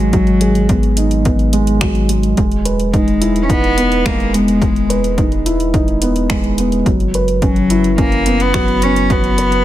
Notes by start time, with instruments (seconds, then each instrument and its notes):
Already playing: sub bass G#1, felt piano F#3 G#3 B3 D#4 G#4, cello F#3
0.13 felt piano F#3, kick, closed hi-hat
0.27 closed hi-hat
0.41 felt piano G#4, closed hi-hat
0.55 closed hi-hat
0.69 felt piano B3, kick, closed hi-hat
0.83 closed hi-hat
0.97 felt piano D#4, closed hi-hat
1.11 closed hi-hat
1.25 felt piano B3, kick, closed hi-hat
1.39 closed hi-hat
1.53 felt piano G#3, closed hi-hat
1.67 closed hi-hat
1.81 felt piano F#3, finger snap, kick, closed hi-hat
1.95 closed hi-hat
2.09 felt piano G#3, closed hi-hat
2.23 closed hi-hat
2.37 sub bass E1, felt piano G#3, kick, closed hi-hat
2.51 closed hi-hat
2.65 felt piano B4, closed hi-hat
2.79 closed hi-hat
2.94 cello G#3, felt piano D#4, kick, closed hi-hat
3.08 closed hi-hat
3.21 felt piano E4, closed hi-hat
3.36 closed hi-hat
3.43 cello C#4
3.49 cello B3, felt piano D#4, kick, closed hi-hat
3.64 closed hi-hat
3.77 felt piano B3, closed hi-hat
3.92 closed hi-hat
4.05 felt piano G#3, cello A#3, finger snap, kick, closed hi-hat
4.20 closed hi-hat
4.33 cello G#3, felt piano B3, closed hi-hat
4.48 closed hi-hat
4.61 felt piano G#3, kick, closed hi-hat
4.76 closed hi-hat
4.90 felt piano B4, closed hi-hat
5.04 closed hi-hat
5.17 felt piano D#4, kick, closed hi-hat
5.32 closed hi-hat
5.46 felt piano E4, closed hi-hat
5.60 closed hi-hat
5.74 felt piano D#4, kick, closed hi-hat
5.88 closed hi-hat
6.02 felt piano B3, closed hi-hat
6.16 closed hi-hat
6.30 felt piano G#3, finger snap, kick, closed hi-hat
6.44 closed hi-hat
6.58 felt piano B3, closed hi-hat
6.72 closed hi-hat
6.86 sub bass F#1, felt piano F#3, kick, closed hi-hat
7.00 closed hi-hat
7.14 felt piano B4, closed hi-hat
7.28 closed hi-hat
7.42 cello F#3, felt piano C#4, kick, closed hi-hat
7.56 closed hi-hat
7.70 felt piano E4, closed hi-hat
7.84 closed hi-hat
7.98 cello A#3, felt piano C#4, kick, closed hi-hat
8.12 closed hi-hat
8.26 felt piano B3, closed hi-hat
8.40 cello B3, closed hi-hat
8.54 felt piano F#3, finger snap, kick, closed hi-hat
8.68 closed hi-hat
8.82 felt piano B3, cello C#4, closed hi-hat
8.96 closed hi-hat
9.10 felt piano F#3, cello B3, kick, closed hi-hat
9.24 closed hi-hat
9.38 felt piano B4, closed hi-hat
9.52 closed hi-hat